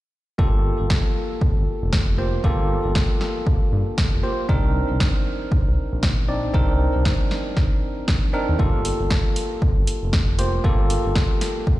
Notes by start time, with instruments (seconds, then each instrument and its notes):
0.38 analog synth bass G1, tine electric piano A#3 F4 G4 A4, kick
0.80 analog synth bass G1
0.90 kick, snare
1.41 kick
1.57 analog synth bass G1
1.83 analog synth bass F1
1.93 kick, snare
2.18 tine electric piano A#3 F4 G4 C5
2.44 analog synth bass G1, tine electric piano A#3 F4 G4 A4, kick
2.85 analog synth bass G1
2.95 kick, snare
3.21 snare
3.47 kick
3.72 analog synth bass G2
3.98 kick, snare
4.13 analog synth bass F1
4.23 tine electric piano A#3 F4 G4 C5
4.49 analog synth bass C2, tine electric piano C4 D4 D#4 A#4, kick
4.90 analog synth bass C2
5.00 kick, snare
5.52 kick
5.67 analog synth bass C2
5.93 analog synth bass A#1
6.03 kick, snare
6.28 tine electric piano C4 D4 D#4 D5
6.54 analog synth bass C2, tine electric piano C4 D4 D#4 A#4, kick
6.95 analog synth bass C2
7.05 kick, snare
7.31 snare
7.57 kick, snare
8.08 kick, snare
8.33 tine electric piano C4 D4 D#4 A#4
8.49 analog synth bass D#2
8.59 analog synth bass G1, tine electric piano A#3 F4 G4 A4, kick
8.85 open hi-hat
9.00 analog synth bass G1
9.10 kick, snare
9.36 open hi-hat
9.62 kick
9.77 analog synth bass G1
9.87 open hi-hat
10.03 analog synth bass F1
10.13 kick, snare
10.39 tine electric piano A#3 F4 G4 C5, open hi-hat
10.64 analog synth bass G1, tine electric piano A#3 F4 G4 A4, kick
10.90 open hi-hat
11.06 analog synth bass G1
11.15 kick, snare
11.41 snare, open hi-hat
11.67 kick